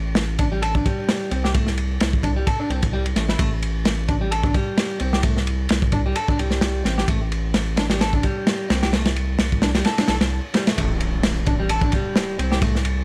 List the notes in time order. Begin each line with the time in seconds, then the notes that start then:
Already playing: A1
0.15 snare, ride
0.39 D4, kick, ride
0.52 G3
0.62 A4, ride
0.75 D4, kick
0.86 G3, kick, ride
1.09 snare, ride
1.31 C2 C4, ride
1.44 G4, snare
1.54 A3, kick, ride
1.67 snare
1.78 ride
2.00 C2, snare, ride
2.13 kick
2.23 D4, kick, ride
2.36 G3
2.47 A4, kick, ride
2.60 D4
2.70 C2 C4, ride
2.83 kick, ride
2.93 G3
3.06 ride
3.16 A1 A3, snare, ride
3.29 E4, snare
3.39 A1 A3, kick, ride
3.62 ride
3.85 snare, ride
4.08 D4, kick, ride
4.21 G3
4.31 A4, ride
4.43 D4, kick
4.54 G3, kick, ride
4.78 snare, ride
5.00 C2 C4, ride
5.13 G4, snare
5.23 A3, kick, ride
5.37 snare
5.47 ride
5.69 C2, snare, ride
5.82 kick
5.92 D4, kick, ride
6.06 G3
6.16 A4, ride
6.28 D4, kick
6.39 C2 G3, ride
6.51 snare
6.61 snare, ride
6.85 A1 C4, snare, ride
6.98 G4, snare
7.08 A1 A3, kick, ride
7.32 ride
7.54 snare, ride
7.77 D4, snare, ride
7.90 G3, snare, ride
8.01 A4, snare, ride
8.13 D4, kick
8.23 G3, kick, ride
8.47 snare, ride
8.70 C2 C4, snare, ride
8.82 G4, snare, ride
8.93 A3, snare, ride
9.05 snare, ride
9.16 ride
9.39 C2, snare, ride
9.52 kick
9.62 D4, snare, ride
9.75 G3, snare, ride
9.85 A4, snare, ride
9.98 D4, snare, ride
10.08 B1 A4, snare, ride
10.21 C2, snare, ride
10.54 G3, snare, ride
10.67 A3, snare, ride
10.78 A1 A3, kick, ride, impact
11.00 ride
11.23 snare, ride
11.46 D4, kick, ride
11.60 G3
11.69 A4, ride
11.81 D4, kick
11.92 G3, kick, ride
12.16 snare, ride
12.39 C2 C4, ride
12.52 G4, snare
12.62 A3, kick, ride
12.75 snare
12.85 ride